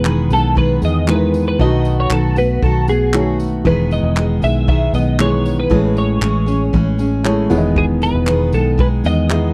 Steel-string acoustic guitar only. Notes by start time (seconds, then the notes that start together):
0.04 D#3 G#3 B3 G#4
0.30 D#3 G#3 B3 G#4
0.55 D#3 G#3 B3 G#4
0.82 D#3 G#3 B3 G#4
1.08 D#3 G#3 B3 G#4
1.60 B2 D#3 A3 B3 F#4
2.11 D#3 A3 B3 F#4
2.37 A3 B3 F#4
2.62 D#3 A3 B3 F#4
2.88 A3 B3 F#4
3.14 D#3 A3 B3 F#4
3.65 E2 B2 D#3 G#3 B3 G#4
4.16 D#3 G#3 B3 G#4
4.42 D#3 G#3 B3 G#4
4.68 D#3 G#3 B3 G#4
4.93 D#3 G#3 B3 G#4
5.19 D#3 G#3 B3 G#4
5.70 A2 E3 G#3 C#4 G#4
6.21 E3 G#3 C#4 G#4
6.46 G#3 C#4 G#4
6.73 E3 G#3 C#4 G#4
6.98 G#3 C#4 G#4
7.24 E3 G#3 C#4 G#4
7.50 E2 B2 D#3 G#3 B3 G#4
8.27 D#3 G#3 B3 G#4
8.52 D#3 G#3 B3 G#4
8.78 D#3 G#3 B3 G#4
9.04 D#3 G#3 B3 G#4
9.29 D#3 G#3 B3 G#4